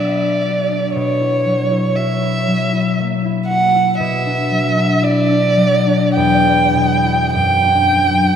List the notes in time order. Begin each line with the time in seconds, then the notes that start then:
Already playing: B2 F#3 B3 D4 F#4 D5
0.21 D4
0.46 F#4
0.71 D4
0.96 B2 C#5
1.21 E4
1.46 F#3
1.70 E4
1.96 F#4 E5
2.21 E4
2.47 F#3
2.72 E4
3.00 A#3
3.25 E4
3.48 F#4 F#5
3.75 E4
4.00 B2 E5
4.26 D4
4.51 F#3
4.76 D4
5.02 E4 D5
5.29 D4
5.57 F#3
5.87 D4
6.17 E2 G5
6.46 E4
6.75 B2
7.05 E4
7.34 F#2 G5
7.64 D4
7.93 F#3
8.22 D4